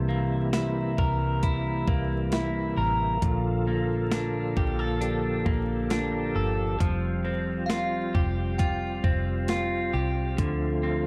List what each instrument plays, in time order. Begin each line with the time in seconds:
Already playing: fingered electric bass C2, tonewheel organ C3 E3 G3 A#3 E4, clean electric guitar C3
0.09 clean electric guitar A#3
0.53 clean electric guitar E4, snare, closed hi-hat
0.98 fingered electric bass C2, clean electric guitar A#4, kick
1.43 clean electric guitar E4, kick, closed hi-hat
1.87 fingered electric bass C2, clean electric guitar A#3, kick
2.32 clean electric guitar E4, snare, closed hi-hat
2.77 fingered electric bass A1, clean electric guitar A#4
3.22 fingered electric bass A#1, clean electric guitar A#2, tonewheel organ D3 F3 F4 A4, kick, closed hi-hat
3.68 clean electric guitar A#3
4.12 clean electric guitar D4, snare, closed hi-hat
4.57 fingered electric bass A#1, clean electric guitar G4, kick
4.79 clean electric guitar A4
5.01 clean electric guitar D4, tonewheel organ G4, closed hi-hat
5.46 fingered electric bass A#1, clean electric guitar A#3, kick
5.90 clean electric guitar D4, snare, closed hi-hat
6.35 fingered electric bass G1, clean electric guitar A4
6.80 fingered electric bass F1, clean electric guitar F3, tonewheel organ G3 C4 F4, kick, closed hi-hat
7.25 clean electric guitar C4
7.66 clean electric guitar F4, synth bell F5, snare
7.70 closed hi-hat
8.14 fingered electric bass F1, clean electric guitar G4, kick
8.58 clean electric guitar F4, synth bell G5, kick, closed hi-hat
9.04 fingered electric bass F1, clean electric guitar C4, kick
9.48 clean electric guitar F4, snare, closed hi-hat
9.93 fingered electric bass C2, clean electric guitar G4
10.38 fingered electric bass D2, clean electric guitar D3, tonewheel organ D3 F3 A3, kick, closed hi-hat
10.83 clean electric guitar C4